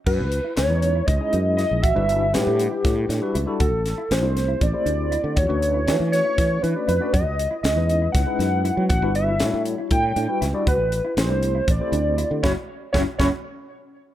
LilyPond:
<<
  \new Staff \with { instrumentName = "Analog synth lead" } { \time 7/8 \key fis \phrygian \tempo 4 = 119 b'4 cis''4 dis''4 dis''8 | e''4 g'2 r8 | a'4 c''4 d''4. | cis''4. cis''4 b'8 b'8 |
dis''4 dis''4 fis''4. | fis''8 e''4 r8 g''4 r8 | b'4 c''4 d''4. | cis''8 r8 cis''8 cis''8 r4. | }
  \new Staff \with { instrumentName = "Clean electric guitar" } { \time 7/8 \key fis \phrygian fis'8 r16 e'8 dis'8 e'8 r16 dis'8 e'8 | fis'8 r16 e'8 d'8 e'8 r16 d'8 e'8 | fis'8 r16 e'8 d'8 e'8 r16 d'8 e'8 | fis'8 r16 e'8 d'8 e'8 r16 d'8 e'8 |
fis'8 r16 e'8 dis'8 e'8 r16 dis'8 e'8 | fis'8 r16 e'8 d'8 e'8 r16 d'8 e'8 | fis'8 r16 e'8 d'8 e'8 r16 d'8 e'8 | <cis' e' fis'>8 r8 <cis' e' fis'>8 <cis' e' fis'>8 r4. | }
  \new Staff \with { instrumentName = "Tine electric piano" } { \time 7/8 \key fis \phrygian r4 r16 <gis cis' dis' e' b'>8. r16 <gis cis' dis' e' gis'>4~ <gis cis' dis' e' gis'>16 | r16 <g d' e' fis' b'>8. <g d' e' b' fis''>4. r16 <g d' e' fis' b'>8 <g d' e' fis' a'>16 | r4 r16 <a c' e' g' c''>8. r16 <a c' e' g' c''>4~ <a c' e' g' c''>16 | r16 <a cis' d' fis' b'>8. <a cis' d' fis' b'>4. r16 <a cis' d' fis' d''>8 <a cis' d' fis' d''>16 |
r4 r16 <gis cis' dis' e' b'>8. r16 <gis cis' dis' e' b'>4~ <gis cis' dis' e' b'>16 | r16 <g d' e' fis' b'>8. <g d' e' fis' cis''>4. r16 <g d' e' fis' b'>8 <g d' e' fis' d''>16 | r4 r16 <a c' e' g' c''>8. r16 <a c' e' g' c''>4~ <a c' e' g' c''>16 | <cis' e' fis'>8 r8 <cis' e' fis'>8 <cis' e' fis'>8 r4. | }
  \new Staff \with { instrumentName = "Fretless electric bass" } { \clef bass \time 7/8 \key fis \phrygian fis,16 cis,8 r16 cis,16 e,8. cis,16 r16 fis,8. ais,,16 | a,,16 g,,8. a,16 a,8 r16 a,8 a,16 r16 cis,16 r16 | d,16 a,,8 r16 a,,16 c,8. a,,16 r16 d,8. d16 | e,16 d,8. e16 e8 r16 e8 e16 r16 eis,16 r16 |
fis,16 cis,8 r16 cis,16 e,8. cis,16 r16 fis,8. fis16 | a,,16 g,,8. a,16 a,8 r16 a,8 a,16 r16 cis,16 r16 | d,16 a,,8 r16 a,,16 c,8. a,,16 r16 d,8. d16 | fis,,16 r8. fis,,16 r16 fis,,16 r4. r16 | }
  \new DrumStaff \with { instrumentName = "Drums" } \drummode { \time 7/8 <cymc bd>8 hh8 <hh sn>8 hh8 <hh bd>8 hh8 <hh sn>8 | <hh bd>8 hh8 <hh sn>8 hh8 <hh bd sn>8 <hh sn>8 hh8 | <hh bd>8 <hh sn>8 <hh sn>8 <hh sn>8 <hh bd>8 hh8 hh8 | <hh bd>8 hh8 <hh sn>8 <hh sn>8 <hh bd sn>8 hh8 hh8 |
<hh bd>8 hh8 <hh sn>8 hh8 <hh bd sn>8 <hh sn>8 hh8 | <hh bd>8 hh8 <hh sn>8 hh8 <hh bd>8 hh8 <hh sn>8 | <hh bd>8 hh8 <hh sn>8 hh8 <hh bd>8 hh8 hh8 | <bd sn>4 <bd sn>8 <bd sn>8 r4. | }
>>